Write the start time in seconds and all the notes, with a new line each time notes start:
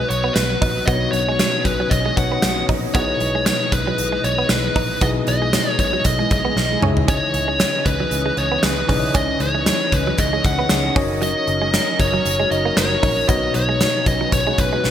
Already playing: B2 F#3 B3 D#4 F#4 B4 D#5
0.09 B1 C#5, muted clean electric guitar stroke, closed hi-hat
0.24 B3
0.34 B1 B4, snare, closed hi-hat, tambourine
0.62 A#1 D#4, kick, open hi-hat
0.86 B1 B2 B3 C#4 D4 F#4 B4 C#5 D#5, kick, closed hi-hat
0.93 D#4
1.12 B1 C#5, muted clean electric guitar stroke, closed hi-hat
1.29 G#3
1.39 F#3, snare, closed hi-hat, tambourine
1.64 B1 B4, muted clean electric guitar stroke, kick, closed hi-hat
1.80 F#3
1.90 B1 D#5, kick, closed hi-hat
2.06 G#3
2.16 B1 B3 D#4 F#4 B4 C#5 F#5, muted clean electric guitar stroke, kick, closed hi-hat
2.32 B3
2.42 B1, snare, closed hi-hat, tambourine
2.69 A#1 D#4, kick, open hi-hat
2.93 B1 B2 E3 G#3 B3 D#4 E4 G#4 B4 C#5 D#5, kick, closed hi-hat
3.20 B1, muted clean electric guitar stroke, closed hi-hat
3.35 G#3
3.46 F#3 C#5, snare, closed hi-hat, tambourine
3.72 B1 B4, muted clean electric guitar stroke, kick, closed hi-hat
3.87 F#3
3.98 B1, closed hi-hat
4.12 G#3
4.24 B1 C#5, muted clean electric guitar stroke, closed hi-hat
4.38 B3
4.49 B1 B4, snare, closed hi-hat, tambourine
4.76 A#1 D#4, kick, open hi-hat
5.01 B1 B2 B3 D#4 E4 G#4 B4 D#5, kick, closed hi-hat
5.27 B1 D#5, muted clean electric guitar stroke, closed hi-hat
5.42 G#3
5.53 F#3, snare, closed hi-hat, tambourine
5.79 B1 C#5, muted clean electric guitar stroke, kick, closed hi-hat
5.93 F#3
6.04 B1 D#5, kick, closed hi-hat
6.19 G#3 E4 G#4
6.31 B1 D#5, muted clean electric guitar stroke, kick, closed hi-hat
6.45 G#3 B3 E4 G#4
6.56 B1, snare
6.71 G#3 E4 G#4
6.81 C#2 C#3 E3 C#4 D#4 E4 G#4 C#5 D#5, mid tom
6.97 floor tom
7.08 C#4 C#5, kick, closed hi-hat
7.34 C#2, muted clean electric guitar stroke, closed hi-hat
7.48 G#3
7.60 F#3, snare, closed hi-hat, tambourine
7.86 C#2 B4, muted clean electric guitar stroke, kick, closed hi-hat
8.00 F#3
8.11 C#2, closed hi-hat
8.26 G#3
8.37 C#2 C#5, muted clean electric guitar stroke, closed hi-hat
8.52 B3
8.63 C#2 B4, snare, closed hi-hat, tambourine
8.88 B1 C#3 C#4 D#4 E4 G#4 C#5 D5, kick, open hi-hat
8.97 D#5
9.14 C#2 C#4 D#5, kick, closed hi-hat
9.40 C#2 C#5, muted clean electric guitar stroke, closed hi-hat
9.55 G#3
9.66 F#3, snare, closed hi-hat, tambourine
9.92 C#2 B4, muted clean electric guitar stroke, kick, closed hi-hat
10.07 F#3
10.18 C#2 D#5, kick, closed hi-hat
10.33 G#3
10.44 C#2 F#5, muted clean electric guitar stroke, kick, closed hi-hat
10.59 B3
10.69 C#2 D#4 E4 G#4 C#5 D#5, snare, closed hi-hat, tambourine
10.95 F#1 F#3 C#4 D#4 F#4 A#4 C#5 D#5, kick, open hi-hat
11.22 F#3 D#5, closed hi-hat
11.47 F#1, muted clean electric guitar stroke, closed hi-hat
11.62 G#3
11.74 F#3, snare, closed hi-hat, tambourine
11.99 F#1 C#5, muted clean electric guitar stroke, kick, closed hi-hat
12.13 F#3
12.25 F#1, closed hi-hat
12.40 G#3
12.51 F#1 D#4 F#4 A#4 C#5 D#5, muted clean electric guitar stroke, closed hi-hat
12.65 A#3
12.77 F#1 C#5, snare, closed hi-hat, tambourine
13.03 A#1 D#4, kick, open hi-hat
13.28 B1 B2 B3 C#4 D#4 F#4 B4 C#5 D#5, kick, closed hi-hat
13.54 B1 C#5, muted clean electric guitar stroke, closed hi-hat
13.69 G#3
13.81 F#3, snare, closed hi-hat, tambourine
14.06 B1 D#5, muted clean electric guitar stroke, kick, closed hi-hat
14.21 F#3
14.32 B1 C#5, kick, closed hi-hat
14.47 G#3 C#4 D#4 F#4
14.58 B1 B4, muted clean electric guitar stroke, kick, closed hi-hat
14.72 G#3 C#4 D#4 F#4
14.84 B1, snare